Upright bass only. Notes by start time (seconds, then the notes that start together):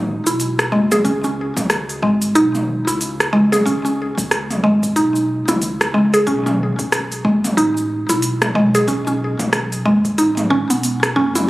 Already playing: A1
0.26 B1
0.73 F#1
1.05 C#2
1.57 C#2
2.03 G#1
2.36 B1
2.88 C#2
3.34 C#2
3.66 C#2
4.18 C#2
4.64 G#1
4.97 B1
5.48 C#2
5.95 C#2
6.27 B1
6.79 B1
7.24 F#1
7.57 A1
8.09 B1
8.55 B1
8.87 B1
9.39 B1
9.86 F#1
10.18 A1
10.70 B1
11.16 F#1